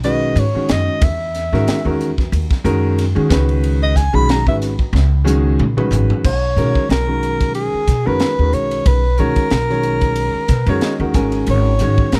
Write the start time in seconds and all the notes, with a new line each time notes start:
Already playing: B1
0.04 D#3 G#3 C#4 F#4 B4 D#5, hi-hat pedal, ride
0.36 G#2 C#5, ride
0.55 D#3 G#3 C#4 F#4 G#4, muted upright bass stroke
0.69 F#2 D#5, snare, hi-hat pedal, ride
1.01 E2 E5, kick, ride
1.35 snare, hi-hat pedal, ride
1.52 G#2 D#3 G#3 C#4 F#4 A#4, snare
1.67 muted upright bass stroke, snare, ride
1.85 E2 D#3 G#3 C#4 F#4 A#4
2.01 hi-hat pedal, ride
2.18 F#4 B4, kick, snare
2.32 D#2 F#4 A#4, ride
2.51 kick, snare
2.64 F#2 D#3 G#3 C#4 F#4 A#4, hi-hat pedal, ride
2.98 snare, ride
3.15 D#3 G#3 C#4 F#4 G#4
3.29 C#2 D#3 G#3 C#4 F#4 B4, kick, snare, hi-hat pedal, ride
3.49 ride
3.64 ride
3.83 D#5
3.96 G#5, kick, snare, hi-hat pedal, ride
4.13 B1 D#3 G#3 C#4 F#4 G#4 B5
4.29 A#5, snare, ride
4.46 G#1 D#3 G#3 C#4 F#4 B4 E5, kick
4.62 snare, hi-hat pedal, ride
4.79 kick
4.93 C#2 F#4 B4, snare
5.24 D#3 G#3 C#4 F#4 G#4, hi-hat pedal, high tom
5.59 A#2, mid tom
5.77 D#3 G#3 C#4 F#4 B4, muted upright bass stroke, mid tom
5.91 G#1, floor tom, hi-hat pedal
6.10 floor tom
6.24 B1 C#5, kick, crash
6.56 B2 D#3 G#3 C#4 F#4 A#4, hi-hat pedal, ride
6.75 muted upright bass stroke, kick
6.89 B1 F#4 A#4 B4, snare, ride
7.07 D#3 G#3 C#4 F#4 A#4
7.23 hi-hat pedal, ride
7.40 kick, ride
7.55 G#4, ride
7.74 muted upright bass stroke
7.87 B2, kick, snare, hi-hat pedal, ride
8.05 F#2 D#3 G#3 C#4 F#4 A#4 B4
8.19 snare, ride
8.39 D#2 D#3 G#3 C#4 F#4 A#4
8.53 B1 C#5, hi-hat pedal, ride
8.71 ride
8.86 B1 B4, kick, ride
9.18 B2 D#3 G#3 C#4 F#4 A#4 C#5, hi-hat pedal, ride
9.36 muted upright bass stroke, kick, ride
9.50 B1, snare, ride
9.69 D#3 G#3 C#4 F#4 C#5, snare
9.83 hi-hat pedal, ride
10.01 kick, ride
10.16 ride
10.35 muted upright bass stroke
10.48 B2 B4, kick, snare, hi-hat pedal, ride
10.66 F#2 D#3 G#3 C#4 F#4 C#5, ride
10.81 D#5, snare, ride
11.00 D#2 D#3 G#3 C#4 F#4 A#4 F#5
11.14 G#1 D#3 G#3 C#4 F#4 A#4 G#5, kick, hi-hat pedal, ride
11.32 ride
11.47 G#1 C#5, ride
11.79 G#2 D#3 G#3 C#4 F#4 C#5, hi-hat pedal, ride
11.98 muted upright bass stroke, kick
12.12 G#1 A#4, snare, ride